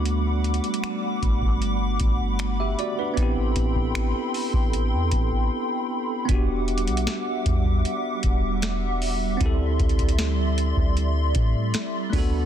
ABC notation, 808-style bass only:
X:1
M:4/4
L:1/16
Q:1/4=77
K:Em
V:1 name="808-style bass" clef=bass
D,,3 z3 G,,, G,,,3 G,,,4 z2 | A,,,2 A,,, A,,,2 z2 A,,,2 E,, A,,,2 z4 | E,,,3 B,,, z2 E,,2 z2 E,,,6 | D,,2 D,,4- D,, D,,3 A,,2 z2 D,,2 |]